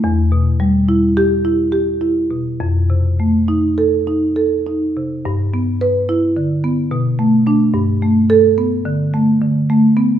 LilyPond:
<<
  \new Staff \with { instrumentName = "Marimba" } { \time 3/4 \key g \major \tempo 4 = 71 r4 \tuplet 3/2 { r8 g'4 } r4 | r4 \tuplet 3/2 { r8 a'4 } r4 | \tuplet 3/2 { r4 b'8 } r4 \tuplet 3/2 { r4 d'8 } | \tuplet 3/2 { r4 a'8 } r2 | }
  \new Staff \with { instrumentName = "Marimba" } { \time 3/4 \key g \major \tuplet 3/2 { e,8 b,8 g8 e'4 e'8 g'8 e'8 b,8 } | \tuplet 3/2 { f,8 c8 a8 ees'4 ees'8 a'8 ees'8 c8 } | \tuplet 3/2 { g,8 b4 e'8 d8 b8 b,8 a8 a8 } | \tuplet 3/2 { g,8 a4 b8 d8 a8 d8 a8 b8 } | }
>>